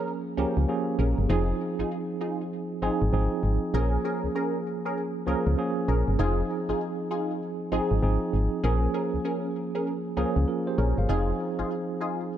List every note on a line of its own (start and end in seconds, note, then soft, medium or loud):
0.00 0.38 F3 medium
0.00 0.38 A#3 medium
0.00 0.11 C#4 medium
0.00 0.38 C#4 medium
0.00 0.12 G#4 medium
0.00 0.69 G#4 medium
0.00 0.12 A#4 medium
0.37 0.45 C#2 soft
0.37 0.62 F3 medium
0.37 0.62 A#3 medium
0.37 0.60 C#4 medium
0.37 0.62 C#4 medium
0.37 0.63 G4 medium
0.37 0.60 G#4 medium
0.37 0.60 A#4 medium
0.57 0.66 C#2 medium
0.68 1.16 F3 medium
0.68 1.16 A#3 medium
0.68 1.16 C#4 medium
0.68 1.16 G#4 medium
0.99 1.14 A#1 medium
0.99 1.21 C#4 medium
0.99 1.21 G#4 medium
0.99 1.21 A#4 medium
1.18 1.27 G1 medium
1.29 1.53 F1 loud
1.29 2.18 F3 medium
1.29 2.19 C4 medium
1.29 1.52 D#4 medium
1.29 2.19 D#4 medium
1.29 1.52 F4 medium
1.29 1.52 G#4 loud
1.29 2.19 G#4 medium
1.79 1.84 G#1 soft
1.79 1.95 D#4 medium
1.79 1.95 F4 medium
1.79 1.95 G#4 medium
2.21 2.43 D#4 medium
2.21 2.43 F4 medium
2.21 2.43 G#4 medium
2.82 2.90 G#1 soft
2.82 3.06 F3 medium
2.82 3.07 C4 medium
2.82 3.04 D#4 medium
2.82 3.07 D#4 medium
2.82 3.05 F4 medium
2.82 3.05 G#4 medium
2.82 3.07 G#4 loud
3.02 3.10 G#1 medium
3.13 3.28 G#1 loud
3.13 3.60 F3 medium
3.13 3.61 C4 medium
3.13 3.61 D#4 medium
3.13 3.61 G#4 medium
3.43 3.58 G#1 medium
3.74 3.98 A#1 loud
3.74 4.63 F3 medium
3.74 4.63 A#3 medium
3.74 3.96 C#4 medium
3.74 4.64 C#4 medium
3.74 3.96 G#4 medium
3.74 4.64 G#4 medium
3.74 3.96 A#4 loud
4.04 4.27 C#4 medium
4.04 4.27 G#4 medium
4.04 4.27 A#4 medium
4.24 4.29 C#2 medium
4.35 4.57 C#4 medium
4.35 4.58 G#4 medium
4.35 4.58 A#4 medium
4.85 5.01 C#4 medium
4.85 5.01 G#4 medium
4.85 5.02 A#4 medium
5.27 5.35 C#2 soft
5.27 5.51 F3 medium
5.27 5.52 A#3 medium
5.27 5.49 C#4 medium
5.27 5.52 C#4 medium
5.27 5.49 G#4 medium
5.27 5.52 G#4 medium
5.27 5.50 A#4 medium
5.47 5.55 C#2 medium
5.57 6.05 F3 medium
5.57 6.05 A#3 medium
5.57 6.06 C#4 medium
5.57 6.06 G#4 medium
5.88 6.03 A#1 medium
5.88 6.10 C#4 medium
5.88 6.11 G#4 medium
5.88 6.11 A#4 medium
6.08 6.17 G1 medium
6.19 6.43 F1 loud
6.19 7.08 F3 medium
6.19 7.08 C4 medium
6.19 6.41 D#4 medium
6.19 7.08 D#4 medium
6.19 6.41 F4 medium
6.19 6.41 G#4 loud
6.19 7.09 G#4 loud
6.69 6.74 G#1 medium
6.69 6.85 D#4 medium
6.69 6.85 F4 medium
6.69 6.85 G#4 medium
7.11 7.33 D#4 medium
7.11 7.33 F4 medium
7.11 7.33 G#4 medium
7.72 7.80 G#1 soft
7.72 7.96 F3 medium
7.72 7.97 C4 medium
7.72 7.94 D#4 medium
7.72 7.97 D#4 medium
7.72 7.94 F4 medium
7.72 7.94 G#4 medium
7.72 7.97 G#4 medium
7.91 8.00 G#1 medium
8.02 8.18 G#1 loud
8.02 8.50 F3 medium
8.02 8.50 C4 medium
8.02 8.51 D#4 medium
8.02 8.51 G#4 medium
8.33 8.48 G#1 medium
8.64 8.88 A#1 medium
8.64 9.53 F3 medium
8.64 9.53 A#3 medium
8.64 8.86 C#4 loud
8.64 9.53 C#4 medium
8.64 8.86 G#4 medium
8.64 9.53 G#4 medium
8.64 8.86 A#4 loud
8.94 9.16 C#4 medium
8.94 9.17 G#4 medium
8.94 9.17 A#4 medium
9.14 9.19 C#2 soft
9.25 9.47 C#4 medium
9.25 9.47 G#4 medium
9.25 9.47 A#4 medium
9.75 9.91 C#4 medium
9.75 9.91 G#4 medium
9.75 9.91 A#4 medium
10.17 10.25 C#2 soft
10.17 10.41 F3 medium
10.17 10.42 A#3 medium
10.17 10.39 C#4 medium
10.17 10.42 C#4 medium
10.17 10.39 G#4 medium
10.17 10.42 G#4 loud
10.17 10.39 A#4 medium
10.36 10.45 C#2 medium
10.48 10.67 F4 medium
10.48 10.66 A#4 medium
10.67 10.78 G4 medium
10.67 10.78 C5 medium
10.78 10.93 A#1 loud
10.78 11.00 C#4 medium
10.78 11.00 G#4 medium
10.78 10.97 G#4 medium
10.78 11.00 A#4 medium
10.78 10.97 C#5 medium
10.98 11.06 G1 medium
10.98 11.27 C5 medium
10.98 11.27 F5 medium
11.09 11.33 F1 loud
11.09 11.98 F3 medium
11.09 11.98 C4 medium
11.09 11.31 D#4 loud
11.09 11.98 D#4 medium
11.09 11.31 F4 medium
11.09 11.31 G#4 loud
11.09 11.99 G#4 loud
11.59 11.64 G#1 medium
11.59 11.75 D#4 medium
11.59 11.75 F4 medium
11.59 11.75 G#4 medium
12.00 12.23 D#4 medium
12.00 12.23 F4 medium
12.00 12.23 G#4 medium